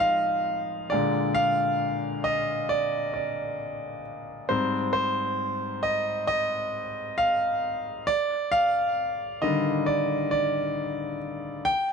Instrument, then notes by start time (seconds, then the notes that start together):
grand piano
Already playing: F3 G#3 D#4 D#5
0.00 F5
0.90 A#2 D3 G#3 D5
1.35 F5
2.24 D#5
2.69 D5
3.14 D5
4.49 G#2 G3 C4 C5
4.93 C5
5.83 D#5
6.27 D#5
7.18 F5
8.07 D5
8.52 F5
9.42 D3 D#3 G3 D#5
9.86 D5
10.31 D5
11.65 G5